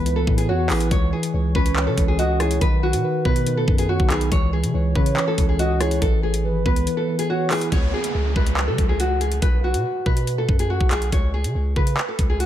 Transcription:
Already playing: 808-style bass C#2, tine electric piano E3 B3, nylon-string guitar B4, soft synth lead B4
0.06 tine electric piano E3, closed hi-hat
0.16 nylon-string guitar A4
0.27 808-style bass A2, tine electric piano E3, kick
0.38 nylon-string guitar G#4, closed hi-hat
0.48 808-style bass E2, nylon-string guitar F#4, soft synth lead C#5
0.70 808-style bass A1, tine electric piano E4, nylon-string guitar G#4, soft synth lead B4, clap, open hi-hat
0.81 closed hi-hat
0.91 808-style bass C#2, tine electric piano E3, nylon-string guitar C#5, kick, closed hi-hat
1.13 tine electric piano E3, nylon-string guitar G#4
1.23 closed hi-hat
1.34 808-style bass C#2, tine electric piano E3, soft synth lead C#5
1.55 808-style bass C#2, tine electric piano C#4, nylon-string guitar B4, kick
1.66 closed hi-hat
1.76 tine electric piano E3, clap
1.87 808-style bass C#3, nylon-string guitar A4
1.98 808-style bass C#2, tine electric piano E3, kick, closed hi-hat
2.08 nylon-string guitar G#4
2.19 nylon-string guitar F#4, soft synth lead D#5, closed hi-hat
2.40 tine electric piano E4, nylon-string guitar G#4, soft synth lead C#5, cross-stick, closed hi-hat
2.51 closed hi-hat
2.61 808-style bass B1, tine electric piano D#3, nylon-string guitar B4, kick, closed hi-hat
2.83 tine electric piano D#3, nylon-string guitar F#4
2.93 808-style bass B2, closed hi-hat
3.04 tine electric piano D#3, soft synth lead B4
3.25 808-style bass B2, tine electric piano B3, nylon-string guitar B4, kick
3.36 closed hi-hat
3.46 tine electric piano D#3, closed hi-hat
3.57 nylon-string guitar A4
3.68 808-style bass F#2, tine electric piano D#3, kick
3.78 nylon-string guitar G#4, closed hi-hat
3.89 nylon-string guitar F#4, soft synth lead C#5
4.00 808-style bass B1, kick
4.10 808-style bass B1, tine electric piano D#4, nylon-string guitar G#4, soft synth lead B4, clap, closed hi-hat
4.21 closed hi-hat
4.32 808-style bass C#2, tine electric piano E3, nylon-string guitar C#5, kick, closed hi-hat
4.53 tine electric piano E3, nylon-string guitar G#4
4.63 808-style bass C#3, closed hi-hat
4.74 808-style bass C#2, tine electric piano E3, soft synth lead C#5
4.95 808-style bass C#3, tine electric piano C#4, nylon-string guitar B4, kick
5.06 closed hi-hat
5.17 tine electric piano E3, clap
5.27 nylon-string guitar A4
5.38 808-style bass C#2, tine electric piano E3, kick, closed hi-hat
5.49 nylon-string guitar G#4
5.59 nylon-string guitar F#4, soft synth lead D#5, closed hi-hat
5.80 tine electric piano E4, nylon-string guitar G#4, soft synth lead C#5, cross-stick, closed hi-hat
5.91 closed hi-hat
6.02 808-style bass A1, tine electric piano E3, nylon-string guitar A4, kick, closed hi-hat
6.23 tine electric piano E3, nylon-string guitar G#4
6.34 closed hi-hat
6.44 808-style bass G#1, tine electric piano E3, soft synth lead B4
6.66 808-style bass C#2, tine electric piano B3, nylon-string guitar B4, kick
6.76 closed hi-hat
6.87 tine electric piano E3, closed hi-hat
6.97 nylon-string guitar A4
7.08 tine electric piano E3
7.19 nylon-string guitar G#4, closed hi-hat
7.29 nylon-string guitar F#4, soft synth lead C#5
7.51 tine electric piano E4, nylon-string guitar G#4, soft synth lead B4, clap, open hi-hat
7.61 closed hi-hat
7.72 808-style bass C#2, nylon-string guitar C#5, kick, closed hi-hat, downlifter
7.94 nylon-string guitar G#4
8.04 closed hi-hat
8.15 808-style bass C#2
8.36 808-style bass C#2, nylon-string guitar B4, kick
8.46 closed hi-hat
8.57 clap
8.68 808-style bass C#3, nylon-string guitar A4
8.78 808-style bass C#2, kick, closed hi-hat
8.89 nylon-string guitar G#4
9.00 nylon-string guitar F#4, closed hi-hat
9.21 nylon-string guitar G#4, closed hi-hat
9.32 closed hi-hat
9.42 808-style bass B1, nylon-string guitar B4, kick, closed hi-hat
9.64 nylon-string guitar F#4
9.74 808-style bass B2, closed hi-hat
10.06 808-style bass B2, nylon-string guitar B4, kick
10.17 closed hi-hat
10.27 closed hi-hat
10.38 nylon-string guitar A4
10.49 808-style bass F#2, kick
10.59 nylon-string guitar G#4, closed hi-hat
10.70 nylon-string guitar F#4
10.81 808-style bass B1, kick
10.91 808-style bass B1, nylon-string guitar G#4, clap, closed hi-hat
11.02 closed hi-hat
11.12 808-style bass C#2, nylon-string guitar C#5, kick, closed hi-hat
11.34 nylon-string guitar G#4
11.44 808-style bass C#3, closed hi-hat
11.55 808-style bass C#2
11.76 808-style bass C#3, nylon-string guitar B4, kick
11.87 closed hi-hat
11.97 clap
12.08 nylon-string guitar A4
12.19 808-style bass C#2, kick, closed hi-hat
12.30 nylon-string guitar G#4
12.40 nylon-string guitar F#4, closed hi-hat

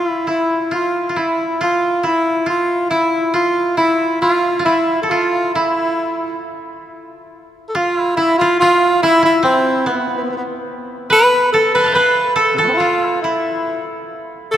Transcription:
Already playing: tenor saxophone F4, koto F4
0.07 tenor saxophone E4
0.27 koto E4, tenor saxophone E4
0.71 koto F4, tenor saxophone F4
1.09 koto F4
1.16 koto E4, tenor saxophone E4
1.61 koto F4, tenor saxophone F4
2.03 koto E4, tenor saxophone E4
2.46 koto F4, tenor saxophone F4
2.90 tenor saxophone E4, koto E4
3.34 koto F4, tenor saxophone F4
3.77 koto E4, tenor saxophone E4
4.22 tenor saxophone F4, koto F4
4.59 koto F4
4.65 tenor saxophone E4, koto E4
5.02 tenor saxophone A4, koto A4
5.10 tenor saxophone F4, koto F4
5.55 tenor saxophone E4, koto E4
7.69 tenor saxophone A4
7.75 koto F4, tenor saxophone F4
7.98 koto E4
8.17 tenor saxophone E4, koto E4
8.38 tenor saxophone F4, koto F4
8.60 tenor saxophone F4, koto F4
9.03 tenor saxophone E4, koto E4
9.23 koto E4, tenor saxophone E4
9.43 koto C4, tenor saxophone C4
9.86 koto B3, tenor saxophone B3
9.93 tenor saxophone B3
10.00 tenor saxophone B3
10.08 tenor saxophone B3
10.17 tenor saxophone B3
10.24 tenor saxophone B3
10.30 tenor saxophone B3
10.37 tenor saxophone B3
11.10 koto B4, tenor saxophone B4
11.53 tenor saxophone A4, koto A4
11.75 tenor saxophone B4, koto B4 C6
11.80 koto A5 B5
11.86 koto E5 F5
11.92 tenor saxophone B4, koto B4 C5
12.36 koto A4, tenor saxophone A4
12.54 tenor saxophone C3 E3 A4
12.58 tenor saxophone F3, koto A4
12.64 tenor saxophone A3 B3
12.69 tenor saxophone C4
12.73 tenor saxophone E4 F4
12.80 koto F4
13.04 koto E4
13.22 tenor saxophone E4, koto E4
14.51 tenor saxophone A4, koto A4

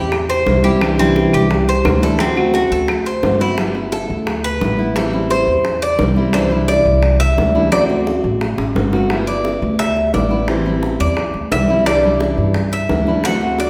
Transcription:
Already playing: upright bass E2, steel-string acoustic guitar G3 C4 E4, cuban tres G4
0.12 muted steel-string acoustic guitar stroke, high bongo, claves
0.29 cuban tres C5, high bongo
0.46 upright bass C2, steel-string acoustic guitar E3 G3 C4 E4, high bongo, low bongo
0.64 steel-string acoustic guitar G3 C4 E4, cuban tres G4, high bongo
0.81 steel-string acoustic guitar C3 E3 G3 D4 E4, high bongo, claves
0.98 steel-string acoustic guitar E3 G3 D4 E4, cuban tres C4, high bongo
1.16 high bongo
1.33 upright bass C2, cuban tres G4, claves
1.51 muted steel-string acoustic guitar stroke, high bongo
1.68 cuban tres C5, high bongo
1.85 upright bass D2, steel-string acoustic guitar E3 G3 D4 E4, high bongo, low bongo, claves
2.02 steel-string acoustic guitar E3 G3 D4 E4, cuban tres A4, high bongo
2.19 steel-string acoustic guitar D3 A3 C4 F#4, cuban tres C4, high bongo
2.36 steel-string acoustic guitar A3 C4 F#4, high bongo, claves
2.54 cuban tres F#4, high bongo
2.71 upright bass D2, cuban tres A4
2.88 muted steel-string acoustic guitar stroke, high bongo, claves
3.05 cuban tres C5, high bongo
3.23 upright bass G1, steel-string acoustic guitar D3 A3 C4 F#4, high bongo, low bongo
3.40 steel-string acoustic guitar A3 C4 F#4, cuban tres E4, high bongo
3.58 steel-string acoustic guitar G3 B3 E4, high bongo
3.75 steel-string acoustic guitar B3 E4, high bongo
3.92 cuban tres A4, high bongo
4.10 upright bass D2
4.27 muted steel-string acoustic guitar stroke, high bongo
4.44 cuban tres B4, high bongo
4.61 upright bass A1, steel-string acoustic guitar G3 B3 E4, high bongo, low bongo
4.78 steel-string acoustic guitar B3 E4, high bongo
4.96 steel-string acoustic guitar E3 G3 C4 E4, cuban tres A4, high bongo
5.13 steel-string acoustic guitar G3 C4 E4, high bongo
5.30 cuban tres C5, high bongo
5.47 upright bass E2
5.65 muted steel-string acoustic guitar stroke, high bongo
5.82 cuban tres D5, high bongo
5.99 upright bass C2, steel-string acoustic guitar E3 G3 C4 E4, high bongo, low bongo
6.16 steel-string acoustic guitar G3 C4 E4, high bongo
6.33 steel-string acoustic guitar C3 E3 G3 D4 E4, cuban tres C5, high bongo
6.51 steel-string acoustic guitar E3 G3 D4 E4, high bongo
6.68 cuban tres D5, high bongo
6.85 upright bass C2
7.03 muted steel-string acoustic guitar stroke, high bongo
7.20 cuban tres E5, high bongo
7.37 upright bass D2, steel-string acoustic guitar E3 G3 D4 E4, high bongo, low bongo
7.55 steel-string acoustic guitar E3 G3 D4 E4, high bongo
7.71 steel-string acoustic guitar D3 A3 C4 F#4, cuban tres D5, high bongo
7.89 steel-string acoustic guitar A3 C4 F#4, high bongo
8.07 high bongo
8.24 upright bass A1
8.41 muted steel-string acoustic guitar stroke, high bongo
8.58 upright bass A1, high bongo
8.75 upright bass G1, steel-string acoustic guitar D3 A3 C4 F#4, low bongo
8.93 steel-string acoustic guitar A3 C4 F#4, low bongo
9.10 steel-string acoustic guitar G3 B3 E4, high bongo
9.27 steel-string acoustic guitar B3 E4, cuban tres D5, high bongo
9.45 high bongo
9.62 upright bass D2
9.79 cuban tres E5, muted steel-string acoustic guitar stroke, high bongo
9.97 high bongo
10.14 upright bass A1, steel-string acoustic guitar G3 B3 E4, cuban tres D5, high bongo, low bongo
10.31 steel-string acoustic guitar B3 E4, high bongo
10.48 steel-string acoustic guitar E3 G3 C4 E4, high bongo
10.66 steel-string acoustic guitar G3 C4 E4, high bongo
10.83 high bongo
11.00 upright bass E2, cuban tres D5
11.17 muted steel-string acoustic guitar stroke, high bongo
11.34 upright bass D2, high bongo
11.52 upright bass C2, steel-string acoustic guitar E3 G3 C4 E4, cuban tres E5, high bongo, low bongo
11.69 steel-string acoustic guitar G3 C4 E4, high bongo
11.86 steel-string acoustic guitar C3 E3 G3 D4 E4, cuban tres D5, high bongo
12.03 steel-string acoustic guitar E3 G3 D4 E4, high bongo
12.20 high bongo
12.38 upright bass G2
12.54 muted steel-string acoustic guitar stroke, high bongo
12.72 cuban tres E5, high bongo
12.89 upright bass D2, steel-string acoustic guitar E3 G3 D4 E4, high bongo, low bongo
13.07 steel-string acoustic guitar E3 G3 D4 E4, high bongo
13.24 steel-string acoustic guitar D3 A3 C4 F#4, cuban tres F#5, high bongo
13.41 steel-string acoustic guitar A3 C4 F#4, high bongo
13.58 cuban tres D5, high bongo

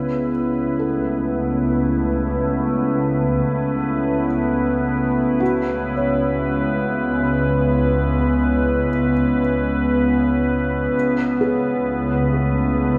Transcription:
Already playing: double bass section C#2, ambient pad C#3 B3 E4 B4, synth drone C#3 C#4, felt piano G#4
0.00 ambient pad A3
0.79 felt piano A4
5.40 double bass section C#2, felt piano F#4
5.52 ambient pad G#3
5.68 felt piano B4
5.97 felt piano C#5
10.94 double bass section C#2
11.41 felt piano G#4
11.58 ambient pad A3

